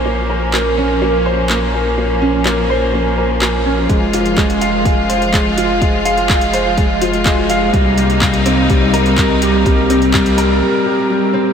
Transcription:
<<
  \new Staff \with { instrumentName = "Grand piano" } { \time 4/4 \key bes \dorian \tempo 4 = 125 bes8 bes'8 bes8 des'8 bes8 c''8 bes8 bes'8 | bes8 des'8 bes8 c''8 bes8 bes'8 bes8 des'8 | aes8 f'8 aes8 f''8 aes8 c''8 aes8 f'8 | aes8 f''8 aes8 c''8 aes8 f'8 aes8 f''8 |
g8 g'8 g8 c'8 g8 bes'8 g8 g'8 | g8 c'8 g8 bes'8 g8 g'8 g8 c'8 | }
  \new Staff \with { instrumentName = "String section" } { \time 4/4 \key bes \dorian << { <bes des'>1~ | <bes des'>1 | <aes f'>1~ | <aes f'>1 |
<c bes ees'>1~ | <c bes ees'>2 r2 | } \\ { f1~ | f1~ | f1~ | f1 |
g1~ | g2 r2 | } >> }
  \new Staff \with { instrumentName = "Sub bass" } { \clef bass \time 4/4 \key bes \dorian bes,,1~ | bes,,1 | f,,1~ | f,,1 |
c,1~ | c,2 r2 | }
  \new DrumStaff \with { instrumentName = "Drums" } \drummode { \time 4/4 r4 hc4 r4 hc4 | r4 hc4 r4 hc4 | <hh bd>8 hh16 hh16 <hc bd>16 hh16 hh8 <hh bd>8 hh16 hh16 <hc hh bd>8 hh8 | <hh bd>8 hh16 hh16 <hc bd>16 hh16 hh8 <hh bd>8 hh16 hh16 <hc hh bd>8 hh8 |
<hh bd>8 hh16 hh16 <hc bd>16 hh16 hh8 <hh bd>8 hh16 hh16 <hc hh bd>8 hh8 | <hh bd>8 hh16 hh16 <hc bd>16 hh16 hh8 r4 r4 | }
>>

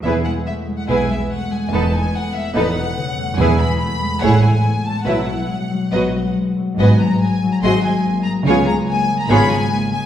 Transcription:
<<
  \new Staff \with { instrumentName = "Violin section" } { \time 4/4 \key e \major \tempo 4 = 144 e''8 fis''8 e''8. fis''16 gis''8 e''8 fis''8 gis''8 | a''8 gis''8 fis''8 e''8 fis''2 | gis''8 b''8 b''4 fis''8 gis''4 a''8 | fis''2. r4 |
\key gis \minor gis''8 ais''8 gis''8. ais''16 bis''8 gis''4 ais''8 | gis''8 ais''8 gis''8. ais''16 b''8 gis''4 gis''8 | }
  \new Staff \with { instrumentName = "Violin section" } { \time 4/4 \key e \major <gis' b'>8 r4. <gis' b'>8 r4. | <a' b'>8 r4. <a' b'>8 r4. | <gis' b'>8 r4. <gis' cis''>8 r4. | <b' e''>8 r4. <b' dis''>8 r4. |
\key gis \minor <b' dis''>8 r4. <gis' dis''>8 r4. | <gis' cis''>8 r4. <gis' cis''>8 r4. | }
  \new Staff \with { instrumentName = "Viola section" } { \time 4/4 \key e \major <b e'>8 r4. <b e'>8 r4. | <b dis'>8 r4. <b dis'>8 r4. | <b e'>8 r4. <a e'>8 r4. | <fis e'>8 r4. <fis fis'>8 r4. |
\key gis \minor <b fis'>8 r4. <bis fis'>8 r4. | <b eis'>8 r4. <b eis'>8 r4. | }
  \new Staff \with { instrumentName = "Harp" } { \clef bass \time 4/4 \key e \major e,8 gis8 a8 gis8 b,8 gis8 a8 gis8 | e,8 a8 b8 a8 e,8 b,8 cis8 a8 | e,8 gis8 a8 gis8 a,8 a8 b8 a8 | b,8 fis8 gis8 fis8 b,8 fis8 gis8 fis8 |
\key gis \minor gis,8 fis8 gis8 fis8 gis,8 gis8 ais8 gis8 | cis8 gis8 ais8 gis8 cis'8 gis8 ais8 gis8 | }
  \new Staff \with { instrumentName = "Cello section" } { \clef bass \time 4/4 \key e \major e,4 r4 b,4 r4 | e,4 r4 e,4 r4 | e,4 r4 a,4 r4 | b,4 r4 b,4 r4 |
\key gis \minor gis,4 r4 gis,4 r4 | cis4 r4 gis,4 r4 | }
  \new Staff \with { instrumentName = "Double bass section" } { \clef bass \time 4/4 \key e \major e,,4 r4 b,,4 r4 | e,,4 r4 e,,4 r4 | e,,4 r4 a,,4 r4 | b,,4 r4 b,,4 r4 |
\key gis \minor gis,,4 r4 gis,,4 r4 | cis,4 r4 gis,,4 r4 | }
>>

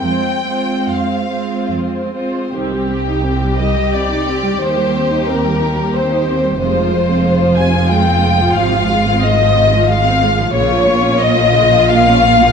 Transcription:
<<
  \new Staff \with { instrumentName = "Violin section" } { \time 3/4 \key f \minor \tempo 4 = 89 <f' c''>8 <f' c''>4 <f' c''>4 <f' c''>8 | \key c \minor g'4. ees''8 d''4 | c''4 bes'4 c''4 | c''4. aes''8 g''4 |
f''4 ees''4 f''4 | \key bes \dorian des''4 ees''4 f''4 | }
  \new Staff \with { instrumentName = "Violin section" } { \time 3/4 \key f \minor g''4 f''4 r4 | \key c \minor g'2.~ | g'2. | f'2.~ |
f'2. | \key bes \dorian f'2. | }
  \new Staff \with { instrumentName = "Viola section" } { \clef bass \time 3/4 \key f \minor << { aes8 aes4 aes4 aes8 | \key c \minor c'2.~ | c'2. | aes2. |
f2.~ | \key bes \dorian f2. | } \\ { c'8 c'4 c'4 c'8 | ees16 g16 c'16 ees'16 c'16 g16 ees16 g16 c'16 ees'16 c'16 g16 | ees16 g16 c'16 ees'16 c'16 g16 ees16 g16 c'16 ees'16 c'16 g16 | c16 f16 aes16 c'16 aes16 f16 c16 f16 aes16 c'16 aes16 f16 |
c16 f16 aes16 c'16 aes16 f16 c16 f16 aes16 c'16 aes16 f16 | des16 f16 bes16 des'16 bes16 f16 des16 f16 bes16 des'16 bes16 f16 | } >> }
  \new Staff \with { instrumentName = "Cello section" } { \clef bass \time 3/4 \key f \minor f,4 f,4 f,4 | \key c \minor c,2. | ees,2. | f,2. |
aes,2. | \key bes \dorian bes,2. | }
  \new Staff \with { instrumentName = "Double bass section" } { \clef bass \time 3/4 \key f \minor r2. | \key c \minor c,2. | ees,2. | f,,2. |
aes,,2. | \key bes \dorian bes,,2. | }
>>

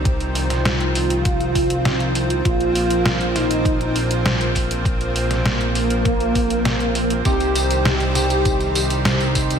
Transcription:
<<
  \new Staff \with { instrumentName = "Analog synth lead" } { \time 4/4 \key c \minor \tempo 4 = 100 r4 f'2. | f'4. ees'4. r4 | r4 bes2. | g'4. g'4. r4 | }
  \new Staff \with { instrumentName = "Analog polysynth" } { \time 4/4 \key c \minor r1 | r1 | r1 | <c c' ees' g' c''>2. <c c' ees' g' c''>4 | }
  \new Staff \with { instrumentName = "Analog synth pad" } { \clef bass \time 4/4 \key c \minor << { c'1~ | c'1~ | c'1 | c'1 | } \\ { <ees f>1 | bes1~ | bes1 | <ees g>1 | } >> }
  \new Staff \with { instrumentName = "Analog synth bass" } { \clef bass \time 4/4 \key c \minor c,1 | bes,,1~ | bes,,1 | c,1 | }
  \new DrumStaff \with { instrumentName = "Drums" } \drummode { \time 4/4 <hh bd>16 hh16 hho16 <hh sn>16 <hh sn>16 hh16 hho16 hh16 <hh bd>16 hh16 <hho bd>16 hh16 <hh sn>16 hh16 hho16 hh16 | <hh bd>16 hh16 hho16 hh16 <hh sn>16 hh16 <hho sn>16 hh16 <hh bd>16 hh16 hho16 hh16 <hh sn>16 hh16 <hho bd>16 hh16 | <hh bd>16 hh16 hho16 <hh sn>16 <hh sn>16 hh16 hho16 hh16 <hh bd>16 hh16 <hho bd>16 hh16 <hh sn>16 hh16 hho16 hh16 | <hh bd tamb>16 <hh tamb>16 <hho tamb>16 <hh tamb>16 <hh sn tamb>16 <hh tamb>16 <hho sn tamb>16 <hh tamb>16 <hh bd tamb>16 <hh tamb>16 <hho tamb>16 <hh tamb>16 <hh sn tamb>16 <hh tamb>16 <hho bd tamb>16 <hh tamb>16 | }
>>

